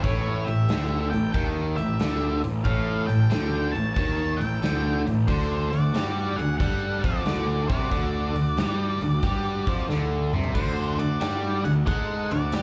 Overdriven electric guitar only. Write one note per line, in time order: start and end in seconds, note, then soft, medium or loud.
0.05 0.47 A2 loud
0.48 0.66 A2 medium
0.70 1.12 D3 medium
1.13 1.30 A2 medium
1.34 1.77 D#3 medium
1.78 1.96 A2 medium
2.00 2.43 D3 loud
2.44 2.62 A2 medium
2.66 3.08 A2 loud
3.09 3.27 A2 medium
3.30 3.73 D3 medium
3.75 3.92 A2 medium
3.97 4.39 D#3 medium
4.41 4.58 A2 medium
4.63 5.05 D3 loud
5.07 5.24 A2 medium
5.28 5.71 D3 loud
5.73 5.90 D3 medium
5.94 6.37 G3 medium
6.39 6.56 D3 medium
6.61 7.03 G3 medium
7.04 7.25 F3 medium
7.26 7.69 D3 loud
7.70 7.91 C3 loud
7.92 8.35 D3 loud
8.36 8.54 D3 medium
8.58 9.01 G3 medium
9.02 9.20 D3 medium
9.24 9.67 G3 medium
9.68 9.89 F3 loud
9.90 10.33 D3 medium
10.34 10.55 C3 medium
10.55 10.98 D3 loud
11.00 11.17 D3 medium
11.21 11.64 G3 medium
11.65 11.83 D3 medium
11.87 12.30 G#3 medium
12.32 12.49 D3 medium
12.53 12.62 G3 loud